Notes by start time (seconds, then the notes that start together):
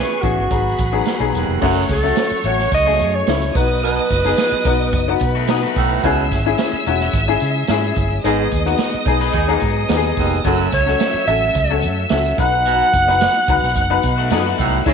Already playing: E3 B3 C#4 G#4 B4 E5 C#6
0.21 A1 E3 B3 C#4 F#4 G#4, kick, closed hi-hat
0.37 G#1
0.50 G#1 F#3 B3 D#4 G#4 F#5 B5, kick, closed hi-hat
0.78 A1, kick, closed hi-hat
0.92 F#3 B3 D#4 G#4
1.05 snare, closed hi-hat
1.19 B1 F#3 B3 D#4 G#4
1.34 E1 D#2, closed hi-hat
1.49 F1
1.60 F#1 F#2 F#3 A3 C#4 F#4 C#5 C#6, kick, crash
1.89 C#2 A4, kick, snare, closed hi-hat
2.03 A3 C#4 F#4
2.16 snare, closed hi-hat
2.31 muted fingered electric bass stroke
2.44 A1 A3 C#4 F#4 C#5, closed hi-hat
2.59 snare
2.72 C#2 D#5, kick, closed hi-hat
2.86 A3 C#4 G#4
2.99 F#2, closed hi-hat
3.15 C#5
3.27 C#2 A3 C#4 E4, snare, closed hi-hat
3.42 closed hi-hat
3.55 B1 B3 D#4 F#4 B4 D#5 D#6, kick, closed hi-hat
3.83 B2 B4, closed hi-hat
4.10 F#1, kick, snare, closed hi-hat
4.24 B3 D#4 G#4, snare
4.37 snare, closed hi-hat
4.52 muted fingered electric bass stroke
4.65 B1 B3 D#4 F#4, kick, closed hi-hat
4.80 closed hi-hat
4.93 F#1, kick, closed hi-hat
5.08 B3 D#4 F#4
5.19 B2 B4 B5, kick, closed hi-hat
5.35 A3 F#4
5.47 B3 D#4 F#4 G#4, snare, closed hi-hat
5.62 A3 F#4, closed hi-hat
5.76 B1 A2, kick, closed hi-hat
6.03 C#2 B2 G#3 C#4 E4 G#4 E5 E6, kick, closed hi-hat
6.32 G#1, kick, snare, closed hi-hat
6.46 C#4 E4 G#4
6.58 snare, closed hi-hat
6.73 muted fingered electric bass stroke
6.86 E1 C#4 E4 F#4, closed hi-hat
7.00 snare
7.13 G#1, kick, closed hi-hat
7.28 C#4 E4 G#4
7.40 C#3, closed hi-hat
7.67 G#2 C#4 E4 G#4, snare, closed hi-hat
7.96 G1, kick, closed hi-hat
8.24 G#1 G#2 B3 D#4 G#4 D#5 D#6, closed hi-hat
8.51 D#2, kick, closed hi-hat
8.65 B3 D#4 F#4, snare
8.77 snare, closed hi-hat
8.94 muted fingered electric bass stroke
9.05 B1 B3 D#4 G#4, kick, closed hi-hat
9.20 D#4 B4, snare, closed hi-hat
9.32 D#2 B3 D#4 G#4, kick, closed hi-hat
9.48 F#3 B3 D#4 G#4
9.60 G#2 D#5 D#6, kick, closed hi-hat
9.88 D#2 B3 D#4 G4, snare, closed hi-hat
9.96 G#4
10.17 F1 D#2, kick, open hi-hat
10.44 F#1 F#2 F#3 A3 C#4 F#4 A4 E5 E6, kick, closed hi-hat
10.72 C#2 C#5, kick, snare, closed hi-hat
10.86 C#4 F#4 A4, snare
11.00 snare, closed hi-hat
11.14 muted fingered electric bass stroke
11.27 A1 C#4 F#4 A4 E5, closed hi-hat
11.55 C#2, kick, closed hi-hat
11.70 C#4 F#4 A4
11.82 F#2, closed hi-hat
12.09 C#2 C#4 F#4 A4 E5, snare, closed hi-hat
12.25 closed hi-hat
12.36 B1 F#3 B3 D#4 F#4 B4 F#5 F#6, kick, closed hi-hat
12.65 B2, closed hi-hat
12.93 F#1, kick, closed hi-hat
13.08 D#4 F#4 B4, snare
13.20 snare, closed hi-hat
13.48 C#2 D#4 F#4 B4, kick, closed hi-hat
13.62 B1, snare
13.75 F#1, kick, closed hi-hat
13.90 D#4 F#4 B4
14.03 B2, kick, closed hi-hat
14.18 A3 F#4
14.30 F#2 B3 D#4 F#4 G#4 A4, snare, closed hi-hat
14.39 B4
14.46 A3 F#4
14.59 C2 A2, kick, closed hi-hat
14.86 C#2 G#2 G#3 C#4 E4 G#4 C#5 E5 E6, kick, closed hi-hat